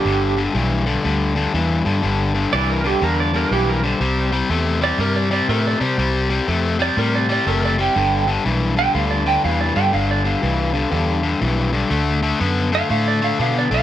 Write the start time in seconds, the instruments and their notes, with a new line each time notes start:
Already playing: electric slide guitar G4
0.05 fingered electric bass G1, overdriven electric guitar G2 D3
0.37 overdriven electric guitar G2 D3
0.54 fingered electric bass B1, overdriven electric guitar G2 E3
0.86 overdriven electric guitar G2 D3
1.03 fingered electric bass D2, overdriven electric guitar G2 D3
1.35 overdriven electric guitar G2 D3
1.54 fingered electric bass E2, overdriven electric guitar G2 E3
1.85 overdriven electric guitar G2 D3, fingered electric bass G2
2.03 fingered electric bass G1, overdriven electric guitar G2 D3
2.34 overdriven electric guitar G2 D3
2.53 fingered electric bass C2, overdriven electric guitar G2 E3, electric slide guitar D5
2.70 electric slide guitar A#4
2.84 overdriven electric guitar G2 D3, electric slide guitar G4
3.01 fingered electric bass E2, overdriven electric guitar G2 D3, electric slide guitar A#4
3.20 electric slide guitar D5
3.34 overdriven electric guitar G2 D3, electric slide guitar A#4
3.51 fingered electric bass B1, overdriven electric guitar G2 E3, electric slide guitar G4
3.69 electric slide guitar A#4
3.83 overdriven electric guitar G2 D3, electric slide guitar C5
4.00 fingered electric bass C2, overdriven electric guitar C3 G3
4.32 overdriven electric guitar C3 G3
4.50 fingered electric bass E2, overdriven electric guitar C3 A3
4.81 overdriven electric guitar C3 G3, electric slide guitar D5
4.98 fingered electric bass G2, overdriven electric guitar C3 G3, electric slide guitar A#4
5.16 electric slide guitar D5
5.30 overdriven electric guitar C3 G3, electric slide guitar D5
5.49 fingered electric bass A2, overdriven electric guitar C3 A3, electric slide guitar A#4
5.67 electric slide guitar D5
5.80 overdriven electric guitar C3 G3, fingered electric bass C3, electric slide guitar C5
5.98 fingered electric bass C2, overdriven electric guitar C3 G3
6.30 overdriven electric guitar C3 G3
6.47 fingered electric bass F2, overdriven electric guitar C3 A3
6.79 overdriven electric guitar C3 G3, electric slide guitar D5
6.97 fingered electric bass A2, overdriven electric guitar C3 G3, electric slide guitar A#4
7.15 electric slide guitar D5
7.29 overdriven electric guitar C3 G3, electric slide guitar D5
7.47 fingered electric bass F#1, overdriven electric guitar C3 A3, electric slide guitar A#4
7.65 electric slide guitar D5
7.78 overdriven electric guitar C3 G3, electric slide guitar G5
7.96 fingered electric bass G1, overdriven electric guitar G2 D3
8.27 overdriven electric guitar G2 D3
8.45 fingered electric bass B1, overdriven electric guitar G2 E3
8.76 overdriven electric guitar G2 D3, electric slide guitar G5
8.94 fingered electric bass D2, overdriven electric guitar G2 D3, electric slide guitar F5
9.11 electric slide guitar D5
9.26 overdriven electric guitar G2 D3, electric slide guitar G5
9.44 fingered electric bass E2, overdriven electric guitar G2 E3, electric slide guitar F5
9.61 electric slide guitar D5
9.75 overdriven electric guitar G2 D3, fingered electric bass G2, electric slide guitar G5
9.93 fingered electric bass G1, overdriven electric guitar G2 D3, electric slide guitar F5
10.11 electric slide guitar D5
10.24 overdriven electric guitar G2 D3, electric slide guitar F5
10.42 fingered electric bass C2, overdriven electric guitar G2 E3
10.74 overdriven electric guitar G2 D3
10.91 fingered electric bass E2, overdriven electric guitar G2 D3
11.23 overdriven electric guitar G2 D3
11.41 fingered electric bass B1, overdriven electric guitar G2 E3
11.73 overdriven electric guitar G2 D3
11.90 fingered electric bass D2, overdriven electric guitar D3 A3
12.23 overdriven electric guitar D3 A3
12.40 fingered electric bass F#2, overdriven electric guitar D3 B3
12.72 overdriven electric guitar D3 A3, electric slide guitar F5
12.90 fingered electric bass A2, overdriven electric guitar D3 A3, electric slide guitar F5
13.08 electric slide guitar D5
13.21 overdriven electric guitar D3 A3, electric slide guitar F5
13.39 fingered electric bass B2, overdriven electric guitar D3 B3, electric slide guitar F5
13.58 electric slide guitar D5
13.71 fingered electric bass B1, overdriven electric guitar D3 A3, electric slide guitar F5